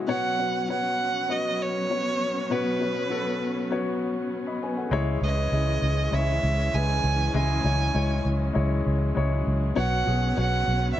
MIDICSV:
0, 0, Header, 1, 5, 480
1, 0, Start_track
1, 0, Tempo, 606122
1, 59, Time_signature, 4, 2, 24, 8
1, 8710, End_track
2, 0, Start_track
2, 0, Title_t, "Violin"
2, 0, Program_c, 0, 40
2, 68, Note_on_c, 0, 78, 79
2, 512, Note_off_c, 0, 78, 0
2, 555, Note_on_c, 0, 78, 88
2, 1040, Note_on_c, 0, 75, 83
2, 1052, Note_off_c, 0, 78, 0
2, 1279, Note_on_c, 0, 73, 84
2, 1291, Note_off_c, 0, 75, 0
2, 1995, Note_on_c, 0, 71, 70
2, 2006, Note_off_c, 0, 73, 0
2, 2946, Note_off_c, 0, 71, 0
2, 4145, Note_on_c, 0, 75, 70
2, 4863, Note_on_c, 0, 76, 75
2, 4875, Note_off_c, 0, 75, 0
2, 5343, Note_on_c, 0, 80, 89
2, 5355, Note_off_c, 0, 76, 0
2, 5821, Note_off_c, 0, 80, 0
2, 5832, Note_on_c, 0, 80, 80
2, 6513, Note_off_c, 0, 80, 0
2, 7744, Note_on_c, 0, 78, 86
2, 8189, Note_off_c, 0, 78, 0
2, 8234, Note_on_c, 0, 78, 88
2, 8621, Note_off_c, 0, 78, 0
2, 8657, Note_on_c, 0, 76, 64
2, 8710, Note_off_c, 0, 76, 0
2, 8710, End_track
3, 0, Start_track
3, 0, Title_t, "Grand piano"
3, 0, Program_c, 1, 0
3, 0, Control_c, 1, 64, 127
3, 56, Note_on_c, 1, 59, 79
3, 62, Note_on_c, 1, 66, 71
3, 63, Note_on_c, 1, 47, 51
3, 69, Control_c, 1, 64, 0
3, 70, Note_on_c, 1, 73, 90
3, 193, Control_c, 1, 64, 127
3, 251, Note_off_c, 1, 59, 0
3, 253, Note_off_c, 1, 66, 0
3, 257, Note_off_c, 1, 73, 0
3, 299, Note_on_c, 1, 59, 54
3, 308, Note_on_c, 1, 66, 54
3, 316, Note_on_c, 1, 73, 57
3, 492, Note_off_c, 1, 59, 0
3, 496, Note_off_c, 1, 66, 0
3, 500, Note_off_c, 1, 73, 0
3, 545, Note_on_c, 1, 59, 63
3, 547, Note_on_c, 1, 66, 52
3, 555, Note_on_c, 1, 73, 66
3, 749, Note_off_c, 1, 47, 0
3, 928, Note_off_c, 1, 59, 0
3, 929, Note_off_c, 1, 66, 0
3, 933, Note_off_c, 1, 73, 0
3, 1013, Note_on_c, 1, 59, 62
3, 1024, Note_on_c, 1, 66, 57
3, 1027, Note_on_c, 1, 75, 69
3, 1402, Note_off_c, 1, 59, 0
3, 1407, Note_off_c, 1, 66, 0
3, 1409, Note_off_c, 1, 75, 0
3, 1503, Note_on_c, 1, 59, 54
3, 1506, Note_on_c, 1, 66, 52
3, 1513, Note_on_c, 1, 73, 62
3, 1887, Note_off_c, 1, 59, 0
3, 1889, Note_off_c, 1, 66, 0
3, 1892, Note_off_c, 1, 73, 0
3, 1977, Note_on_c, 1, 59, 75
3, 1982, Note_on_c, 1, 47, 51
3, 1985, Note_on_c, 1, 66, 71
3, 1990, Note_on_c, 1, 73, 77
3, 2171, Note_off_c, 1, 59, 0
3, 2175, Note_off_c, 1, 66, 0
3, 2177, Note_off_c, 1, 73, 0
3, 2218, Note_on_c, 1, 59, 54
3, 2221, Note_on_c, 1, 66, 51
3, 2230, Note_on_c, 1, 73, 55
3, 2411, Note_off_c, 1, 59, 0
3, 2413, Note_off_c, 1, 66, 0
3, 2418, Note_off_c, 1, 73, 0
3, 2453, Note_on_c, 1, 59, 57
3, 2457, Note_on_c, 1, 66, 55
3, 2465, Note_on_c, 1, 69, 64
3, 2669, Note_off_c, 1, 47, 0
3, 2842, Note_off_c, 1, 59, 0
3, 2844, Note_off_c, 1, 66, 0
3, 2848, Note_off_c, 1, 69, 0
3, 2932, Note_on_c, 1, 59, 71
3, 2939, Note_on_c, 1, 66, 67
3, 2945, Note_on_c, 1, 73, 70
3, 3182, Note_off_c, 1, 73, 0
3, 3321, Note_off_c, 1, 59, 0
3, 3325, Note_off_c, 1, 66, 0
3, 3538, Note_on_c, 1, 83, 53
3, 3543, Note_on_c, 1, 75, 48
3, 3652, Note_off_c, 1, 83, 0
3, 3655, Note_off_c, 1, 75, 0
3, 3665, Note_on_c, 1, 80, 57
3, 3670, Note_on_c, 1, 71, 50
3, 3776, Note_off_c, 1, 80, 0
3, 3778, Note_off_c, 1, 71, 0
3, 3779, Note_on_c, 1, 78, 49
3, 3783, Note_on_c, 1, 69, 39
3, 3890, Note_on_c, 1, 56, 95
3, 3896, Note_on_c, 1, 49, 62
3, 3897, Note_on_c, 1, 64, 84
3, 3903, Note_on_c, 1, 73, 99
3, 3908, Control_c, 1, 64, 0
3, 4006, Note_off_c, 1, 78, 0
3, 4009, Note_off_c, 1, 69, 0
3, 4057, Control_c, 1, 64, 127
3, 4087, Note_off_c, 1, 56, 0
3, 4091, Note_off_c, 1, 64, 0
3, 4094, Note_off_c, 1, 73, 0
3, 4124, Note_on_c, 1, 56, 57
3, 4126, Note_on_c, 1, 64, 48
3, 4138, Note_on_c, 1, 71, 65
3, 4324, Note_off_c, 1, 56, 0
3, 4325, Note_off_c, 1, 64, 0
3, 4331, Note_off_c, 1, 71, 0
3, 4364, Note_on_c, 1, 56, 60
3, 4372, Note_on_c, 1, 64, 49
3, 4379, Note_on_c, 1, 75, 64
3, 4585, Note_off_c, 1, 49, 0
3, 4758, Note_off_c, 1, 56, 0
3, 4761, Note_off_c, 1, 64, 0
3, 4765, Note_off_c, 1, 75, 0
3, 4840, Note_on_c, 1, 56, 62
3, 4851, Note_on_c, 1, 64, 56
3, 4856, Note_on_c, 1, 73, 67
3, 5235, Note_off_c, 1, 56, 0
3, 5241, Note_off_c, 1, 64, 0
3, 5244, Note_off_c, 1, 73, 0
3, 5329, Note_on_c, 1, 56, 58
3, 5337, Note_on_c, 1, 64, 54
3, 5344, Note_on_c, 1, 71, 59
3, 5720, Note_off_c, 1, 56, 0
3, 5724, Note_off_c, 1, 64, 0
3, 5727, Note_off_c, 1, 71, 0
3, 5812, Note_on_c, 1, 56, 80
3, 5819, Note_on_c, 1, 49, 57
3, 5820, Note_on_c, 1, 64, 73
3, 5827, Note_on_c, 1, 75, 77
3, 6009, Note_off_c, 1, 56, 0
3, 6013, Note_off_c, 1, 64, 0
3, 6016, Note_off_c, 1, 75, 0
3, 6050, Note_on_c, 1, 56, 51
3, 6050, Note_on_c, 1, 64, 51
3, 6061, Note_on_c, 1, 73, 61
3, 6247, Note_off_c, 1, 56, 0
3, 6248, Note_off_c, 1, 64, 0
3, 6253, Note_off_c, 1, 73, 0
3, 6290, Note_on_c, 1, 56, 60
3, 6295, Note_on_c, 1, 64, 55
3, 6299, Note_on_c, 1, 73, 68
3, 6507, Note_off_c, 1, 49, 0
3, 6681, Note_off_c, 1, 56, 0
3, 6683, Note_off_c, 1, 64, 0
3, 6685, Note_off_c, 1, 73, 0
3, 6758, Note_on_c, 1, 56, 72
3, 6768, Note_on_c, 1, 64, 67
3, 6772, Note_on_c, 1, 73, 75
3, 7154, Note_off_c, 1, 56, 0
3, 7160, Note_off_c, 1, 64, 0
3, 7162, Note_off_c, 1, 73, 0
3, 7244, Note_on_c, 1, 56, 73
3, 7253, Note_on_c, 1, 64, 58
3, 7261, Note_on_c, 1, 73, 75
3, 7638, Note_off_c, 1, 56, 0
3, 7642, Note_off_c, 1, 64, 0
3, 7646, Note_off_c, 1, 73, 0
3, 7721, Note_on_c, 1, 59, 78
3, 7728, Note_on_c, 1, 47, 55
3, 7731, Note_on_c, 1, 66, 72
3, 7731, Note_on_c, 1, 73, 90
3, 7749, Control_c, 1, 64, 0
3, 7873, Control_c, 1, 64, 127
3, 7923, Note_off_c, 1, 59, 0
3, 7928, Note_off_c, 1, 66, 0
3, 7928, Note_off_c, 1, 73, 0
3, 7961, Note_on_c, 1, 59, 53
3, 7969, Note_on_c, 1, 66, 53
3, 7972, Note_on_c, 1, 68, 58
3, 8163, Note_off_c, 1, 59, 0
3, 8167, Note_off_c, 1, 66, 0
3, 8169, Note_off_c, 1, 68, 0
3, 8200, Note_on_c, 1, 59, 59
3, 8207, Note_on_c, 1, 66, 53
3, 8216, Note_on_c, 1, 73, 72
3, 8421, Note_off_c, 1, 47, 0
3, 8596, Note_off_c, 1, 59, 0
3, 8599, Note_off_c, 1, 66, 0
3, 8604, Note_off_c, 1, 73, 0
3, 8685, Note_on_c, 1, 59, 65
3, 8710, Note_off_c, 1, 59, 0
3, 8710, End_track
4, 0, Start_track
4, 0, Title_t, "String section"
4, 0, Program_c, 2, 48
4, 57, Note_on_c, 2, 59, 56
4, 60, Note_on_c, 2, 54, 62
4, 60, Note_on_c, 2, 61, 65
4, 3866, Note_off_c, 2, 59, 0
4, 3867, Note_off_c, 2, 61, 0
4, 3868, Note_off_c, 2, 54, 0
4, 3897, Note_on_c, 2, 52, 59
4, 3900, Note_on_c, 2, 56, 49
4, 3900, Note_on_c, 2, 61, 61
4, 5800, Note_off_c, 2, 56, 0
4, 5816, Note_on_c, 2, 54, 53
4, 7706, Note_off_c, 2, 52, 0
4, 7708, Note_off_c, 2, 61, 0
4, 7738, Note_on_c, 2, 59, 58
4, 7738, Note_on_c, 2, 61, 66
4, 8710, Note_off_c, 2, 54, 0
4, 8710, Note_off_c, 2, 59, 0
4, 8710, Note_off_c, 2, 61, 0
4, 8710, End_track
5, 0, Start_track
5, 0, Title_t, "Fingered electric bass"
5, 0, Program_c, 3, 33
5, 3891, Note_on_c, 3, 37, 81
5, 4091, Note_off_c, 3, 37, 0
5, 4129, Note_on_c, 3, 37, 82
5, 4330, Note_off_c, 3, 37, 0
5, 4372, Note_on_c, 3, 37, 77
5, 4571, Note_off_c, 3, 37, 0
5, 4612, Note_on_c, 3, 37, 75
5, 4811, Note_off_c, 3, 37, 0
5, 4851, Note_on_c, 3, 37, 76
5, 5051, Note_off_c, 3, 37, 0
5, 5095, Note_on_c, 3, 37, 83
5, 5293, Note_off_c, 3, 37, 0
5, 5338, Note_on_c, 3, 37, 79
5, 5535, Note_off_c, 3, 37, 0
5, 5573, Note_on_c, 3, 37, 88
5, 5772, Note_off_c, 3, 37, 0
5, 5813, Note_on_c, 3, 37, 82
5, 6012, Note_off_c, 3, 37, 0
5, 6054, Note_on_c, 3, 37, 74
5, 6252, Note_off_c, 3, 37, 0
5, 6293, Note_on_c, 3, 37, 92
5, 6492, Note_off_c, 3, 37, 0
5, 6533, Note_on_c, 3, 37, 79
5, 6732, Note_off_c, 3, 37, 0
5, 6779, Note_on_c, 3, 37, 86
5, 6976, Note_off_c, 3, 37, 0
5, 7020, Note_on_c, 3, 37, 86
5, 7216, Note_off_c, 3, 37, 0
5, 7261, Note_on_c, 3, 37, 85
5, 7456, Note_off_c, 3, 37, 0
5, 7499, Note_on_c, 3, 37, 85
5, 7696, Note_off_c, 3, 37, 0
5, 7738, Note_on_c, 3, 35, 85
5, 7935, Note_off_c, 3, 35, 0
5, 7977, Note_on_c, 3, 35, 82
5, 8174, Note_off_c, 3, 35, 0
5, 8218, Note_on_c, 3, 35, 89
5, 8415, Note_off_c, 3, 35, 0
5, 8455, Note_on_c, 3, 35, 77
5, 8653, Note_off_c, 3, 35, 0
5, 8710, End_track
0, 0, End_of_file